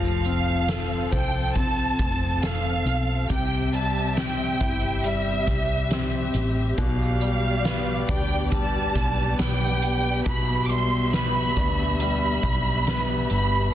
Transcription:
Already playing: fretless electric bass F1, grand piano F3, string section F3 C4 A4, violin section F5
0.25 grand piano C4, closed hi-hat
0.69 grand piano A4, snare, closed hi-hat
1.11 fretless electric bass C2, grand piano C5, violin section G5, kick, closed hi-hat
1.55 grand piano C4, violin section A5, kick, closed hi-hat
1.99 fretless electric bass F1, kick, closed hi-hat
2.43 grand piano A4, violin section F5, snare, closed hi-hat
2.85 fretless electric bass B1, closed hi-hat
3.30 fretless electric bass C2, grand piano C3, string section G4 E5, violin section G5, kick, closed hi-hat
3.73 grand piano G3, violin section A5, closed hi-hat
4.17 grand piano C4, violin section G5, snare, closed hi-hat
4.61 fretless electric bass G1, grand piano E4, kick, closed hi-hat
5.04 grand piano G3, violin section E5, closed hi-hat
5.47 fretless electric bass C2, kick, closed hi-hat
5.91 grand piano C4, snare, closed hi-hat
6.34 fretless electric bass A1, closed hi-hat
6.76 fretless electric bass B1, grand piano B2, string section B3 D5, violin section F5, kick, closed hi-hat
7.21 grand piano G3, closed hi-hat
7.65 grand piano B3, snare, closed hi-hat
8.09 fretless electric bass D2, grand piano D4, violin section G5, kick, closed hi-hat
8.52 grand piano G3, violin section A5, kick, closed hi-hat
8.95 fretless electric bass B1, kick, closed hi-hat
9.39 fretless electric bass B1, grand piano B3, violin section G5, snare, closed hi-hat
9.82 closed hi-hat
10.26 fretless electric bass B1, grand piano B2, string section E5, violin section B5, kick, closed hi-hat
10.65 violin section D6
10.69 grand piano G3, violin section C6, closed hi-hat
11.13 grand piano B3, violin section B5, snare, closed hi-hat
11.57 fretless electric bass D2, grand piano D4, kick, closed hi-hat
12.00 grand piano G3, violin section B5, closed hi-hat
12.43 fretless electric bass B1, kick, closed hi-hat
12.87 grand piano B3, snare, closed hi-hat
13.30 fretless electric bass G1, violin section B5, closed hi-hat

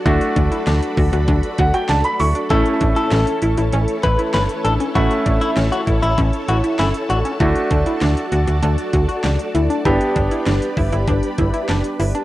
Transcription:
Already playing: string machine F#4 A4 D5
0.06 fm bass D2, grand piano A3 D4 F#4, synth arpeggio sound E4, string machine B5, kick, closed hi-hat
0.21 closed hi-hat
0.36 fm bass D2, synth arpeggio sound D4, kick, closed hi-hat
0.52 synth arpeggio sound E4, closed hi-hat
0.67 fm bass D2, synth arpeggio sound D4, snare, closed hi-hat
0.82 closed hi-hat
0.97 fm bass D2, synth arpeggio sound F#4, kick, open hi-hat
1.13 fm bass D2, synth arpeggio sound F#4, closed hi-hat
1.28 fm bass D2, synth arpeggio sound D4, kick, closed hi-hat
1.43 closed hi-hat
1.58 fm bass D2, synth arpeggio sound F#4, grand piano F#5, kick, closed hi-hat
1.74 synth arpeggio sound F#4, grand piano G5, closed hi-hat
1.89 fm bass C#2, synth arpeggio sound D4, grand piano A5, snare, closed hi-hat
2.04 grand piano B5, closed hi-hat
2.20 fm bass D2, synth arpeggio sound E4, grand piano C#6, open hi-hat
2.35 synth arpeggio sound D4, closed hi-hat
2.50 fm bass A1, grand piano A3 C#4 E4, synth arpeggio sound E4, string machine E4 C#5 A5, clean electric guitar A4, kick, closed hi-hat
2.66 closed hi-hat
2.81 fm bass A1, synth arpeggio sound D4, kick, closed hi-hat
2.96 synth arpeggio sound E4, clean electric guitar A4, closed hi-hat
3.12 fm bass A1, synth arpeggio sound C#4, snare, closed hi-hat
3.27 closed hi-hat
3.42 fm bass A1, synth arpeggio sound E4, closed hi-hat
3.58 fm bass A1, synth arpeggio sound E4, closed hi-hat
3.73 fm bass A1, synth arpeggio sound C#4, closed hi-hat
3.88 closed hi-hat
4.03 fm bass A1, synth arpeggio sound E4, clean electric guitar B4, kick, closed hi-hat
4.19 synth arpeggio sound E4, closed hi-hat
4.34 fm bass G1, synth arpeggio sound C#4, clean electric guitar B4, snare, closed hi-hat
4.49 closed hi-hat
4.65 fm bass A1, synth arpeggio sound D4, clean electric guitar A4, closed hi-hat
4.80 synth arpeggio sound C#4, closed hi-hat
4.95 fm bass A1, grand piano A3 C#4 E4, synth arpeggio sound E4, clean electric guitar F#4, kick, closed hi-hat
5.11 closed hi-hat
5.26 fm bass A1, synth arpeggio sound D4, kick, closed hi-hat
5.41 synth arpeggio sound E4, clean electric guitar E4, closed hi-hat
5.57 fm bass A1, synth arpeggio sound C#4, snare, closed hi-hat
5.72 clean electric guitar F#4, closed hi-hat
5.87 fm bass A1, synth arpeggio sound E4, kick, closed hi-hat
6.03 fm bass A1, clean electric guitar E4, synth arpeggio sound E4, closed hi-hat
6.18 fm bass A1, synth arpeggio sound C#4, kick, closed hi-hat
6.33 closed hi-hat
6.48 fm bass A1, synth arpeggio sound E4, clean electric guitar F#4, closed hi-hat
6.64 synth arpeggio sound E4, closed hi-hat
6.79 fm bass G1, synth arpeggio sound C#4, clean electric guitar E4, snare, closed hi-hat
6.94 closed hi-hat
7.10 fm bass A1, synth arpeggio sound D4, clean electric guitar F#4, closed hi-hat
7.25 synth arpeggio sound C#4, closed hi-hat
7.40 fm bass D2, grand piano A3 D4 F#4, synth arpeggio sound E4, string machine F#4 D5, kick, closed hi-hat
7.56 closed hi-hat
7.71 fm bass D2, synth arpeggio sound D4, kick, closed hi-hat
7.86 synth arpeggio sound E4, closed hi-hat
8.01 fm bass D2, synth arpeggio sound D4, snare, closed hi-hat
8.17 closed hi-hat
8.32 fm bass D2, synth arpeggio sound F#4, closed hi-hat
8.47 fm bass D2, synth arpeggio sound F#4, closed hi-hat
8.63 fm bass D2, synth arpeggio sound D4, closed hi-hat
8.78 closed hi-hat
8.93 fm bass D2, synth arpeggio sound F#4, kick, closed hi-hat
9.09 synth arpeggio sound F#4, closed hi-hat
9.24 fm bass C#2, synth arpeggio sound D4, snare, closed hi-hat
9.39 closed hi-hat
9.55 fm bass D2, synth arpeggio sound E4, closed hi-hat
9.70 synth arpeggio sound D4, closed hi-hat
9.85 fm bass G1, grand piano B3 D4 G4, synth arpeggio sound E4, string machine G4 B4 B5, kick, closed hi-hat
10.01 closed hi-hat
10.16 fm bass G1, synth arpeggio sound D4, kick, closed hi-hat
10.31 synth arpeggio sound E4, closed hi-hat
10.46 fm bass G1, synth arpeggio sound D4, snare, closed hi-hat
10.62 closed hi-hat
10.77 fm bass G1, synth arpeggio sound E4, kick, open hi-hat
10.92 fm bass G1, synth arpeggio sound E4, closed hi-hat
11.08 fm bass G1, synth arpeggio sound D4, kick, closed hi-hat
11.23 closed hi-hat
11.38 fm bass G1, synth arpeggio sound E4, kick, closed hi-hat
11.54 synth arpeggio sound E4, closed hi-hat
11.69 fm bass F#1, synth arpeggio sound D4, snare, closed hi-hat
11.84 closed hi-hat
11.99 fm bass G1, synth arpeggio sound E4, open hi-hat
12.15 synth arpeggio sound D4, closed hi-hat

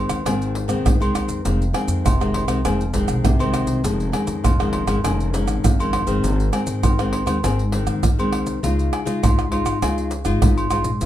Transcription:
Already playing: nylon-string guitar D#3 G#3 C4
0.09 upright bass D#2, pandeiro, tamborim, high agogo, maracas
0.25 upright bass G#1, nylon-string guitar G#2 D#3 G#3 C4, pandeiro, tamborim, low agogo, maracas, surdo
0.42 pandeiro, maracas
0.55 pandeiro
0.68 upright bass D#2, nylon-string guitar D#3 G#3 C4, pandeiro, tamborim, maracas
0.85 upright bass D#2, nylon-string guitar D#3, pandeiro, tamborim, maracas, surdo
1.00 upright bass C2, nylon-string guitar D#3 G#3 C4, pandeiro, high agogo, maracas
1.14 upright bass D#2, pandeiro, tamborim, high agogo, maracas
1.28 upright bass F2, pandeiro, maracas
1.45 upright bass F1, nylon-string guitar F2 D#3 G#3 C4, pandeiro, maracas, surdo
1.62 pandeiro, maracas
1.73 nylon-string guitar D#3 G#3 C4, pandeiro, tamborim, low agogo
1.88 upright bass F2, pandeiro, maracas
2.04 upright bass F1, nylon-string guitar C3, pandeiro, tamborim, high agogo, maracas, surdo
2.20 nylon-string guitar D#3 G#3 C4, pandeiro, tamborim, maracas
2.34 pandeiro, high agogo
2.48 upright bass C2, nylon-string guitar D#3 G#3 C4, pandeiro, tamborim, high agogo, maracas
2.65 upright bass F1, nylon-string guitar F2 D#3 G#3 C4, pandeiro, tamborim, low agogo, maracas, surdo
2.81 pandeiro, maracas
2.94 nylon-string guitar D#3 G#3 C4, pandeiro, maracas, surdo
3.08 upright bass C2, pandeiro, tamborim, maracas
3.24 upright bass C2, nylon-string guitar C3, pandeiro, tamborim, maracas, surdo
3.39 nylon-string guitar D#3 G#3 C4, pandeiro, high agogo, maracas
3.54 pandeiro, tamborim, high agogo, maracas
3.67 upright bass C2, pandeiro, maracas
3.84 upright bass F1, nylon-string guitar F2 D#3 G#3 C#4, pandeiro, maracas, surdo
4.00 pandeiro, maracas
4.12 nylon-string guitar D#3 G#3 C#4, pandeiro, tamborim, low agogo
4.27 upright bass F2, pandeiro, maracas
4.44 upright bass F1, nylon-string guitar F2, pandeiro, tamborim, high agogo, maracas, surdo
4.60 nylon-string guitar D#3 G#3 C#4, pandeiro, tamborim, maracas
4.73 pandeiro, high agogo
4.87 upright bass G#1, nylon-string guitar D#3 G#3 C#4, pandeiro, tamborim, high agogo, maracas
5.04 upright bass F1, nylon-string guitar F2 D#3 G#3 C#4, pandeiro, tamborim, low agogo, maracas, surdo
5.20 pandeiro, maracas
5.33 nylon-string guitar D#3 G#3 C#4, pandeiro, maracas
5.46 upright bass G#1, pandeiro, tamborim, maracas
5.64 upright bass G#1, nylon-string guitar F2, pandeiro, tamborim, maracas, surdo
5.79 nylon-string guitar D#3 G#3 C#4, pandeiro, high agogo, maracas
5.93 pandeiro, tamborim, high agogo
6.07 upright bass G#1, nylon-string guitar D#3 G#3 C4, pandeiro, maracas
6.23 upright bass G#1, nylon-string guitar G#2, pandeiro, maracas, surdo
6.40 pandeiro, maracas
6.52 nylon-string guitar D#3 G#3 C4, pandeiro, tamborim, low agogo, maracas
6.66 upright bass G#2, pandeiro, maracas
6.83 upright bass G#1, nylon-string guitar D#3, pandeiro, tamborim, high agogo, maracas, surdo
6.99 nylon-string guitar D#3 G#3 C4, pandeiro, tamborim, maracas
7.13 pandeiro, high agogo
7.26 upright bass D#2, nylon-string guitar D#3 G#3 C4, pandeiro, tamborim, high agogo, maracas
7.43 upright bass G#1, nylon-string guitar G#2 D#3 G#3 C4, pandeiro, tamborim, low agogo, maracas, surdo
7.59 pandeiro, maracas
7.72 nylon-string guitar D#3 G#3 C4, pandeiro
7.86 upright bass D#2, pandeiro, tamborim, maracas
8.03 upright bass D#2, nylon-string guitar D#3, pandeiro, tamborim, maracas, surdo
8.19 nylon-string guitar D#3 G#3 C4, pandeiro, high agogo, maracas
8.32 pandeiro, tamborim, high agogo
8.46 upright bass C2, pandeiro, maracas
8.63 upright bass C#2, nylon-string guitar C#3 G#3 D#4 F4, pandeiro, maracas, surdo
8.79 pandeiro, maracas
8.93 pandeiro, tamborim, low agogo
9.05 upright bass C#3, nylon-string guitar G#3 D#4 F4, pandeiro, maracas
9.23 upright bass C#2, nylon-string guitar G#2, pandeiro, tamborim, high agogo, maracas, surdo
9.39 pandeiro, tamborim, maracas
9.51 nylon-string guitar G#3 D#4 F4, pandeiro, high agogo
9.66 upright bass G#1, pandeiro, tamborim, high agogo, maracas
9.82 upright bass C#2, nylon-string guitar C#3 G#3 D#4 F4, pandeiro, tamborim, low agogo, maracas, surdo
9.98 pandeiro, maracas
10.11 pandeiro, maracas
10.25 upright bass G#1, nylon-string guitar G#3 D#4 F4, pandeiro, tamborim, maracas
10.42 upright bass G#1, nylon-string guitar G#2, pandeiro, tamborim, maracas, surdo
10.58 pandeiro, high agogo, maracas
10.70 upright bass G#1, nylon-string guitar G#3 D#4 F4, pandeiro, tamborim, high agogo, maracas
10.84 upright bass A#1, pandeiro, maracas
11.01 upright bass A#1, nylon-string guitar A#2 G#3 C#4 F4, pandeiro, maracas, surdo

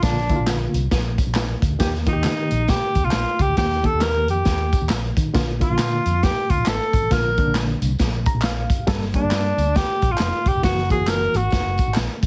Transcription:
0.02 fingered electric bass A#1, reed electric piano D3 A#3 F4, tenor saxophone D4, kick, snare, closed hi-hat, tambourine
0.16 snare
0.29 reed electric piano D3 A#3 E4, kick, closed hi-hat, tambourine
0.36 fingered electric bass A#1, reed electric piano F4
0.46 snare, clap, closed hi-hat, tambourine
0.74 fingered electric bass C2, closed hi-hat, tambourine
0.91 fingered electric bass A#1, kick, snare, closed hi-hat
1.18 kick, closed hi-hat, tambourine
1.27 fingered electric bass A#1
1.35 snare, clap, closed hi-hat, tambourine
1.62 fingered electric bass D2, kick, closed hi-hat, tambourine
1.79 fingered electric bass D#2, reed electric piano D#3 A#3 G4, kick, snare, closed hi-hat, tambourine
1.94 snare
2.06 reed electric piano D#3 A#3 F4, tenor saxophone D#4, kick, closed hi-hat, tambourine
2.13 fingered electric bass D#2, reed electric piano G4
2.24 fingered electric bass D#3, snare, clap, closed hi-hat, tambourine
2.51 fingered electric bass A#1, closed hi-hat, tambourine
2.68 tenor saxophone G4, kick, snare, closed hi-hat, tambourine
2.95 fingered electric bass D#2, kick, closed hi-hat, tambourine
3.04 fingered electric bass C2, tenor saxophone F4
3.11 snare, clap, closed hi-hat, tambourine
3.39 fingered electric bass C#2, tenor saxophone G4, kick, closed hi-hat, tambourine
3.49 fingered electric bass D2
3.57 fingered electric bass D#2, reed electric piano D#3 A#3 G4, tenor saxophone G4, kick, snare, closed hi-hat, tambourine
3.70 snare
3.84 reed electric piano D#3 A#3 G4, tenor saxophone A4, kick, closed hi-hat
3.93 fingered electric bass D#2
4.01 tenor saxophone A#4, snare, clap, closed hi-hat, tambourine
4.28 fingered electric bass F2, tenor saxophone G4, closed hi-hat, tambourine
4.45 fingered electric bass D#2, kick, snare, closed hi-hat, tambourine
4.72 kick, closed hi-hat, tambourine
4.82 fingered electric bass D#2
4.89 fingered electric bass A#1, snare, clap, closed hi-hat, tambourine
5.17 fingered electric bass D#3, kick, closed hi-hat, tambourine
5.33 fingered electric bass A#1, reed electric piano D3 A#3 F4, kick, snare, closed hi-hat, tambourine
5.60 reed electric piano D3 A#3 F4, tenor saxophone F4, kick, closed hi-hat
5.70 fingered electric bass A#1
5.78 fingered electric bass A#2, snare, clap, closed hi-hat, tambourine
6.06 fingered electric bass F2, closed hi-hat, tambourine
6.23 tenor saxophone G4, kick, snare, closed hi-hat, tambourine
6.50 fingered electric bass D2, tenor saxophone F4, kick, closed hi-hat, tambourine
6.58 fingered electric bass A#1
6.66 fingered electric bass A1, tenor saxophone A4, snare, clap, closed hi-hat, tambourine
6.93 fingered electric bass G#1, kick, closed hi-hat, tambourine
7.02 fingered electric bass A1
7.11 fingered electric bass A#1, reed electric piano D3 A#3 F4, tenor saxophone A#4, kick, snare, closed hi-hat, tambourine
7.37 reed electric piano D3 A#3 D4, kick, closed hi-hat
7.46 fingered electric bass A#1
7.55 snare, clap, closed hi-hat, tambourine
7.82 fingered electric bass C2, closed hi-hat, tambourine
7.99 fingered electric bass A#1, kick, snare, closed hi-hat, tambourine
8.26 reed electric piano A#5, kick, closed hi-hat, tambourine
8.34 fingered electric bass A#1
8.42 reed electric piano F5, snare, clap, closed hi-hat, tambourine
8.70 fingered electric bass F#1, kick, closed hi-hat, tambourine
8.87 fingered electric bass G1, reed electric piano G3 A#3 A4, kick, snare, closed hi-hat, tambourine
9.01 snare
9.14 reed electric piano G3 A#3 D4, tenor saxophone D4, kick, closed hi-hat
9.22 fingered electric bass G1
9.30 fingered electric bass G2, snare, clap, closed hi-hat, tambourine
9.57 fingered electric bass D2, closed hi-hat, tambourine
9.75 tenor saxophone G4, kick, snare, closed hi-hat, tambourine
10.02 fingered electric bass A#1, kick, closed hi-hat, tambourine
10.10 fingered electric bass G1, tenor saxophone F4
10.17 fingered electric bass F1, snare, clap, closed hi-hat, tambourine
10.46 fingered electric bass E1, tenor saxophone G4, kick, closed hi-hat, tambourine
10.55 fingered electric bass F1
10.62 fingered electric bass F#1, reed electric piano E3 A#3 F#4, tenor saxophone F#4, kick, snare, closed hi-hat, tambourine
10.78 snare
10.89 reed electric piano E3 A#3 F#4, tenor saxophone G#4, kick, closed hi-hat, tambourine
10.98 fingered electric bass F#1
11.07 tenor saxophone A#4, snare, clap, closed hi-hat, tambourine
11.34 fingered electric bass G#1, tenor saxophone F#4, closed hi-hat, tambourine
11.50 fingered electric bass F#1, kick, snare, closed hi-hat, tambourine
11.65 fingered electric bass F#1
11.78 kick, closed hi-hat, tambourine
11.87 fingered electric bass G#1
11.94 fingered electric bass A#1, snare, clap, closed hi-hat, tambourine
12.23 fingered electric bass A#1, kick, closed hi-hat, tambourine

